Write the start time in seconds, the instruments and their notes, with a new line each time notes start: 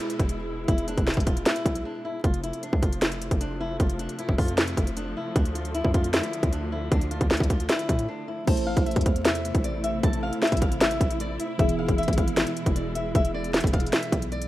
Already playing: string section B2 G#3 E4
0.00 closed hi-hat
0.10 closed hi-hat
0.20 808-style bass E1, kick, closed hi-hat
0.29 closed hi-hat
0.68 808-style bass E1, nylon-string guitar E4, kick, closed hi-hat
0.78 closed hi-hat
0.88 nylon-string guitar D4, closed hi-hat
0.97 808-style bass E1, kick, closed hi-hat
1.07 nylon-string guitar E4, snare, closed hi-hat
1.14 808-style bass E1, kick, closed hi-hat
1.20 closed hi-hat
1.26 nylon-string guitar F4, kick, closed hi-hat
1.37 closed hi-hat
1.46 nylon-string guitar E4, snare, closed hi-hat
1.56 closed hi-hat
1.66 808-style bass B1, kick, closed hi-hat
1.75 closed hi-hat
1.85 nylon-string guitar D4
2.05 nylon-string guitar E4
2.24 808-style bass F1, string section C3 F3 A3, nylon-string guitar F4, kick, closed hi-hat
2.34 closed hi-hat
2.43 nylon-string guitar E4, closed hi-hat
2.53 closed hi-hat
2.63 nylon-string guitar D4, closed hi-hat
2.73 808-style bass C2, kick
2.82 808-style bass F1, nylon-string guitar F4, kick, closed hi-hat
2.92 closed hi-hat
3.02 nylon-string guitar E4, snare, closed hi-hat
3.12 closed hi-hat
3.22 closed hi-hat
3.31 808-style bass F1, kick, closed hi-hat
3.41 nylon-string guitar D4, closed hi-hat
3.61 nylon-string guitar E4
3.80 808-style bass F1, nylon-string guitar F4, kick, closed hi-hat
3.90 closed hi-hat
3.99 nylon-string guitar D4, closed hi-hat
4.09 closed hi-hat
4.19 nylon-string guitar E4, closed hi-hat
4.29 808-style bass E1, kick
4.38 808-style bass F2, nylon-string guitar F4, kick, open hi-hat
4.48 closed hi-hat
4.57 nylon-string guitar E4, snare, closed hi-hat
4.67 closed hi-hat
4.77 808-style bass F1, kick, closed hi-hat
4.87 closed hi-hat
4.97 nylon-string guitar D4, closed hi-hat
5.17 nylon-string guitar E4
5.36 808-style bass D2, string section D3, nylon-string guitar D4, kick, closed hi-hat
5.45 closed hi-hat
5.55 nylon-string guitar F4, closed hi-hat
5.65 closed hi-hat
5.75 nylon-string guitar E4, closed hi-hat
5.85 808-style bass F2, kick
5.94 nylon-string guitar F4, kick, closed hi-hat
6.04 closed hi-hat
6.13 nylon-string guitar E4, snare, closed hi-hat
6.23 closed hi-hat
6.33 closed hi-hat
6.43 808-style bass D2, kick, closed hi-hat
6.53 nylon-string guitar D4, closed hi-hat
6.72 nylon-string guitar E4
6.92 808-style bass D2, nylon-string guitar D4, kick, closed hi-hat
7.01 closed hi-hat
7.11 nylon-string guitar F4, closed hi-hat
7.21 808-style bass D2, kick, closed hi-hat
7.31 nylon-string guitar E4, snare, closed hi-hat
7.37 808-style bass D2, kick, closed hi-hat
7.44 closed hi-hat
7.50 nylon-string guitar F4, kick, closed hi-hat
7.60 closed hi-hat
7.69 nylon-string guitar E4, snare, closed hi-hat
7.79 closed hi-hat
7.89 808-style bass A2, kick, closed hi-hat
7.99 closed hi-hat
8.08 nylon-string guitar D4
8.28 nylon-string guitar E4
8.46 808-style bass A1, string section C3 A3 E4, tine electric piano A3 E4 C5, nylon-string guitar A5, kick, closed hi-hat, crash
8.57 closed hi-hat
8.67 nylon-string guitar F5
8.77 808-style bass A1, kick, closed hi-hat
8.86 nylon-string guitar E5, closed hi-hat
8.91 closed hi-hat
8.96 808-style bass E2, kick, closed hi-hat
9.01 closed hi-hat
9.06 nylon-string guitar F5, kick, closed hi-hat
9.16 closed hi-hat
9.25 nylon-string guitar E5, snare, closed hi-hat
9.35 closed hi-hat
9.45 closed hi-hat
9.55 808-style bass A1, kick, closed hi-hat
9.64 nylon-string guitar D5, closed hi-hat
9.84 nylon-string guitar E5, closed hi-hat
10.03 808-style bass A1, nylon-string guitar A5, kick, closed hi-hat
10.13 closed hi-hat
10.23 nylon-string guitar F5
10.33 closed hi-hat
10.42 nylon-string guitar E5, snare, closed hi-hat
10.47 closed hi-hat
10.52 808-style bass G#1, kick, closed hi-hat
10.57 closed hi-hat
10.62 nylon-string guitar F5, kick, closed hi-hat
10.72 closed hi-hat
10.81 nylon-string guitar E5, snare, closed hi-hat
10.91 closed hi-hat
11.01 808-style bass A1, kick, closed hi-hat
11.11 closed hi-hat
11.20 nylon-string guitar D5, closed hi-hat
11.40 nylon-string guitar E5, closed hi-hat
11.58 808-style bass E1, string section B2 G#3, tine electric piano E3 B3 G#4, nylon-string guitar E5, kick, closed hi-hat
11.69 closed hi-hat
11.79 nylon-string guitar F5
11.88 808-style bass E1, kick, closed hi-hat
11.98 nylon-string guitar E5, closed hi-hat
12.03 closed hi-hat
12.08 808-style bass G#1, kick, closed hi-hat
12.13 closed hi-hat
12.18 nylon-string guitar F5, kick, closed hi-hat
12.28 closed hi-hat
12.37 nylon-string guitar E5, snare, closed hi-hat
12.47 closed hi-hat
12.57 closed hi-hat
12.66 808-style bass E1, kick, closed hi-hat
12.76 nylon-string guitar D5, closed hi-hat
12.95 nylon-string guitar E5, closed hi-hat
13.15 808-style bass E1, nylon-string guitar E5, kick, closed hi-hat
13.25 closed hi-hat
13.34 nylon-string guitar D5
13.44 closed hi-hat
13.54 nylon-string guitar E5, snare, closed hi-hat
13.60 808-style bass E1, kick, closed hi-hat
13.67 closed hi-hat
13.73 nylon-string guitar F5, kick, closed hi-hat
13.80 closed hi-hat
13.86 closed hi-hat
13.93 nylon-string guitar E5, snare, closed hi-hat
14.03 closed hi-hat
14.12 808-style bass B1, kick, closed hi-hat
14.22 closed hi-hat
14.32 nylon-string guitar D5, closed hi-hat
14.42 closed hi-hat